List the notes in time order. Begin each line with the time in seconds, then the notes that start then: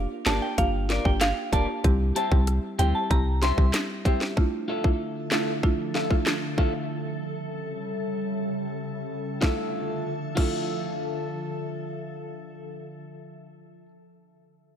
0.26 G1 A#3 D4 F4 G4 A#4 D5 A5, snare, clap, closed hi-hat
0.42 G5
0.58 G1 A#3 D4 F4 G4 F5, kick, closed hi-hat
0.89 F4 A#4 D5, snare, closed hi-hat
1.05 G1 A#3 D4 F4 G4 G5, kick
1.21 F5, cross-stick, snare, clap, closed hi-hat
1.52 F1 A#3 D4 F4 G4 A#4 D5 A5, kick, closed hi-hat
1.68 muted clean electric guitar stroke
1.84 C2 G3 C4 E4 G4, kick, closed hi-hat
2.16 G4 C5 E5 A5, closed hi-hat
2.31 C2 G3 C4 E4 G4, kick
2.47 cross-stick, closed hi-hat
2.79 D2 G3 C4 E4 G4 C5 E5 G5, closed hi-hat
2.95 A5
3.10 C2 G3 C4 E4 G4 A#5, kick, closed hi-hat
3.42 G4 C5 E5 C6, snare, closed hi-hat
3.58 C2 G3 C4 E4 G4, kick
3.74 cross-stick, snare, clap, closed hi-hat
4.05 G3 C4 E4 G4 C5 E5, kick, closed hi-hat
4.21 muted clean electric guitar stroke, snare
4.37 D3 F3 A3 D4 E4 F4 A4 E5, kick
4.68 F4 A4 E5
4.84 A3 D4 E4 F4, kick
5.31 A3 D4 E4 F4 A4 E5, snare, clap
5.63 A3 D4 E4 F4, kick
5.95 F4 A4 E5, snare
6.11 A3 D4 E4 F4, kick
6.26 cross-stick, snare, clap
6.58 A3 D4 E4 F4 A4 E5, kick
6.74 muted clean electric guitar stroke
6.90 C#3 G3
9.41 D3 F3 A3 D4 E4 F4 A4 E5, kick, snare
9.46 E5
10.35 A3 D4 E4 F4 A4, kick, crash
10.40 E5